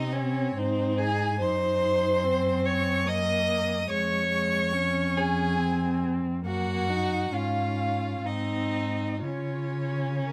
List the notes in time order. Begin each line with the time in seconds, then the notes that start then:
Already playing: C3 C4 D#4 D#5
0.13 C#4 C#5
0.56 G#2 C4 D#4 C5
0.98 G#4 G#5
1.39 F#2 D#4 C5 C6
2.23 C4
2.65 C#5 C#6
3.06 A#3 D#5 D#6
3.88 F2 G#3 C#5 C#6
4.31 G#3
4.73 C#4
5.16 G#4 G#5
5.57 C4
6.44 F#2 A#3 F#4 F#5
6.88 D#4
7.32 G#2 C#4 F4 F5
8.24 G#2 C4 D#4 D#5
9.22 C#3 C#4 F4 C#5
10.25 A#4